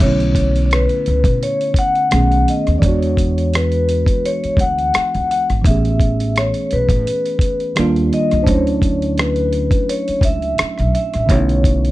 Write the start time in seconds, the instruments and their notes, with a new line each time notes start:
Already playing: tine electric piano D3
0.00 upright bass B1, tine electric piano A3 B3 C#4, vibraphone C#5, kick, closed hi-hat
0.06 tine electric piano E4
0.20 closed hi-hat
0.35 kick, closed hi-hat
0.56 closed hi-hat
0.66 vibraphone C#5
0.71 vibraphone B4, cross-stick, closed hi-hat
0.89 closed hi-hat
1.06 upright bass C#2, closed hi-hat
1.24 upright bass B2, kick, closed hi-hat
1.43 vibraphone C#5, closed hi-hat
1.61 closed hi-hat
1.74 kick, closed hi-hat
1.79 vibraphone F#5
1.95 closed hi-hat
2.11 upright bass B1, tine electric piano D#3 A3 B3 C#4, cross-stick, closed hi-hat
2.15 tine electric piano G#4
2.32 closed hi-hat
2.48 vibraphone D#5, closed hi-hat
2.67 upright bass D#2, cross-stick, closed hi-hat
2.78 tine electric piano E3 G#3, vibraphone D5, kick
2.83 upright bass E2, tine electric piano B3 D4, vibraphone C#5, closed hi-hat
2.88 tine electric piano F#4
3.02 closed hi-hat
3.17 kick, closed hi-hat
3.38 closed hi-hat
3.54 vibraphone B4, cross-stick, closed hi-hat
3.72 closed hi-hat
3.89 closed hi-hat
4.06 kick, closed hi-hat
4.25 vibraphone C#5, closed hi-hat
4.44 muted upright bass stroke, closed hi-hat
4.57 upright bass D2, vibraphone F#5, kick, closed hi-hat
4.78 closed hi-hat
4.94 muted upright bass stroke, cross-stick, closed hi-hat
5.15 upright bass C#2, closed hi-hat
5.31 vibraphone F#5, closed hi-hat
5.50 upright bass G#1, cross-stick, closed hi-hat
5.62 upright bass A1, tine electric piano E3 A3, kick, closed hi-hat
5.66 tine electric piano B3 C#4, vibraphone E5
5.71 tine electric piano G#4
5.85 closed hi-hat
6.00 kick, closed hi-hat
6.20 closed hi-hat
6.36 vibraphone C#5, cross-stick, closed hi-hat
6.54 closed hi-hat
6.71 upright bass B1, vibraphone B4, closed hi-hat
6.89 upright bass A2, kick, closed hi-hat
7.07 closed hi-hat
7.26 closed hi-hat
7.39 kick, closed hi-hat
7.60 closed hi-hat
7.75 upright bass D#2, tine electric piano D#3 G3 A#3 D4, cross-stick, closed hi-hat
7.80 tine electric piano F4
7.96 closed hi-hat
8.13 vibraphone D#5, closed hi-hat
8.31 upright bass C2, cross-stick, closed hi-hat
8.42 tine electric piano D4, vibraphone C5
8.46 upright bass D2, tine electric piano F#3 A3, vibraphone C#5, kick, closed hi-hat
8.51 tine electric piano C#4 E4
8.67 closed hi-hat
8.82 kick, closed hi-hat
9.02 closed hi-hat
9.18 vibraphone B4, cross-stick, closed hi-hat
9.36 closed hi-hat
9.53 closed hi-hat
9.71 kick, closed hi-hat
9.89 vibraphone C#5, closed hi-hat
10.08 muted upright bass stroke, closed hi-hat
10.21 upright bass C#2, vibraphone E5, kick, closed hi-hat
10.42 closed hi-hat
10.58 muted upright bass stroke, cross-stick, closed hi-hat
10.78 upright bass B1, cross-stick, closed hi-hat
10.95 vibraphone E5, closed hi-hat
11.14 upright bass A1, cross-stick, closed hi-hat
11.26 upright bass B1, tine electric piano D3 A3, vibraphone C#5, kick, closed hi-hat
11.31 tine electric piano B3 C#4
11.35 tine electric piano E4
11.49 closed hi-hat
11.64 kick, closed hi-hat
11.85 closed hi-hat